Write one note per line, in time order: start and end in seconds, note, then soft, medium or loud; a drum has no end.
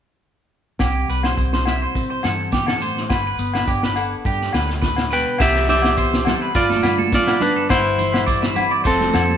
0.79 1.03 C2 medium
0.79 2.24 C3 medium
0.79 1.08 G4 medium
0.79 kick medium
0.79 snare medium
0.79 low agogo medium
0.79 maracas medium
1.09 1.32 C2 medium
1.09 3.39 G3 soft
1.09 1.24 B4 medium
1.09 maracas medium
1.23 1.52 C5 medium
1.23 snare medium
1.23 low agogo medium
1.38 1.84 C2 medium
1.38 1.95 C4 soft
1.38 kick medium
1.38 maracas medium
1.53 1.66 C5 medium
1.53 snare medium
1.66 3.11 E4 soft
1.66 1.81 E5 medium
1.66 snare medium
1.66 low agogo medium
1.82 2.09 C5 medium
1.95 2.19 C3 medium
1.95 3.08 C4 medium
1.95 kick medium
1.95 maracas medium
2.11 2.23 C5 medium
2.23 2.94 G2 medium
2.23 3.07 E3 medium
2.23 2.52 A4 medium
2.23 snare medium
2.23 low agogo medium
2.23 maracas medium
2.39 maracas soft
2.52 2.81 B2 medium
2.52 2.67 G4 medium
2.52 kick medium
2.52 snare medium
2.52 maracas medium
2.67 2.81 A4 medium
2.67 snare medium
2.67 low agogo medium
2.81 3.10 A2 medium
2.81 3.09 C5 medium
2.81 maracas medium
2.97 snare soft
2.97 maracas soft
3.09 3.34 G1 medium
3.09 3.25 B4 medium
3.09 muted clean electric guitar stroke medium
3.09 kick medium
3.09 snare medium
3.09 low agogo medium
3.09 maracas medium
3.27 3.54 B4 medium
3.39 3.62 G1 medium
3.39 5.37 B3 soft
3.39 maracas medium
3.54 3.68 B4 medium
3.54 snare medium
3.54 low agogo medium
3.67 4.14 G1 medium
3.67 4.24 D4 soft
3.67 3.82 G4 medium
3.67 kick medium
3.67 maracas medium
3.83 4.11 B4 medium
3.83 snare medium
3.96 5.37 A4 medium
3.96 low agogo medium
3.96 maracas medium
4.25 4.48 G2 medium
4.25 5.37 D4 medium
4.25 4.53 G4 medium
4.25 kick medium
4.25 maracas medium
4.41 snare soft
4.53 5.24 D2 medium
4.53 5.40 D3 medium
4.53 4.69 B4 medium
4.53 snare medium
4.53 low agogo medium
4.53 maracas medium
4.69 muted clean electric guitar stroke medium
4.69 snare soft
4.69 maracas soft
4.82 5.11 A2 medium
4.82 5.09 B4 medium
4.82 kick medium
4.82 snare medium
4.82 maracas medium
4.96 snare medium
4.96 low agogo medium
5.11 5.40 B2 medium
5.11 5.25 B4 medium
5.11 5.39 B4 medium
5.11 5.39 G5 medium
5.11 maracas medium
5.28 maracas soft
5.38 6.33 C2 medium
5.38 5.69 C3 medium
5.38 5.68 E3 medium
5.38 5.97 B3 medium
5.38 5.67 G4 medium
5.38 5.67 E5 medium
5.38 5.68 E5 medium
5.38 kick medium
5.38 snare medium
5.38 crash medium
5.38 low agogo medium
5.38 maracas loud
5.43 6.26 C4 medium
5.43 6.56 E4 medium
5.55 snare soft
5.69 6.52 E3 medium
5.69 6.51 G4 medium
5.69 5.96 D5 medium
5.69 6.51 E5 medium
5.69 snare soft
5.69 low conga medium
5.69 maracas medium
5.82 snare medium
5.82 low agogo medium
5.97 6.52 B3 medium
5.97 6.25 C5 medium
5.97 kick medium
5.97 maracas medium
6.14 snare medium
6.25 6.52 C4 medium
6.25 6.41 A4 medium
6.25 snare medium
6.25 low conga medium
6.25 low agogo medium
6.42 6.54 B4 medium
6.55 6.78 G1 medium
6.55 7.67 G2 medium
6.55 7.09 F4 medium
6.55 7.67 F4 medium
6.55 6.70 B4 medium
6.55 7.13 D5 medium
6.55 kick medium
6.55 snare soft
6.55 maracas medium
6.70 6.83 A4 medium
6.70 snare soft
6.70 high conga medium
6.83 7.53 G2 medium
6.83 7.69 D3 medium
6.83 6.98 B4 medium
6.83 snare medium
6.83 low agogo medium
6.83 maracas medium
6.98 7.26 A4 medium
6.98 high conga medium
7.13 7.67 B3 medium
7.13 7.40 F4 medium
7.13 7.40 D5 medium
7.13 kick medium
7.13 snare medium
7.13 maracas medium
7.27 7.55 B4 medium
7.27 snare medium
7.27 low agogo medium
7.41 7.68 D4 medium
7.41 7.67 D4 medium
7.41 7.68 B4 medium
7.41 low conga medium
7.41 maracas medium
7.56 7.69 A4 medium
7.69 8.63 G1 medium
7.69 8.82 G2 medium
7.69 8.85 E4 medium
7.69 8.81 E4 medium
7.69 7.97 B4 medium
7.69 8.81 C5 medium
7.69 kick medium
7.69 snare medium
7.69 low agogo medium
7.69 maracas loud
7.98 8.82 E3 medium
7.98 8.12 C5 medium
7.98 low conga medium
7.98 maracas medium
8.13 8.26 B4 medium
8.13 snare medium
8.13 low agogo medium
8.26 8.85 G3 medium
8.26 8.41 D5 medium
8.26 kick medium
8.26 maracas medium
8.42 8.55 E5 medium
8.42 snare medium
8.56 8.82 C4 medium
8.56 8.70 B4 medium
8.56 low conga medium
8.56 low agogo medium
8.56 maracas medium
8.71 8.84 D5 medium
8.84 9.08 F1 medium
8.84 9.37 F2 medium
8.84 9.37 C4 medium
8.84 9.37 F4 medium
8.84 9.37 A4 medium
8.84 9.12 C5 medium
8.84 kick medium
8.84 maracas loud
9.00 snare soft
9.00 high conga medium
9.13 9.37 F2 medium
9.13 9.37 F3 medium
9.13 9.37 A4 medium
9.13 snare medium
9.13 low agogo medium
9.13 maracas medium
9.30 high conga medium